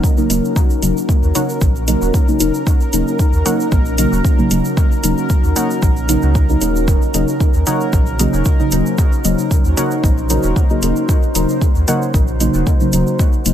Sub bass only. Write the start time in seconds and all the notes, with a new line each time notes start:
0.30 D#1
0.82 D#1
1.23 D#2
1.61 A#1
2.02 D#1
2.40 D#1
2.93 D#1
3.33 D#2
3.72 A#1
4.12 D#1
4.51 D#1
5.04 D#1
5.44 D#2
5.82 A#1
6.23 C#2
6.61 D#1
7.14 D#1
7.54 D#2
7.93 A#1
8.33 D#1
8.72 D#1
9.25 D#1
9.65 D#2
10.04 A#1
10.44 D#1
10.83 D#1
11.35 D#1
11.75 D#2
12.14 A#1
12.54 D#1
12.93 D#1
13.46 D#1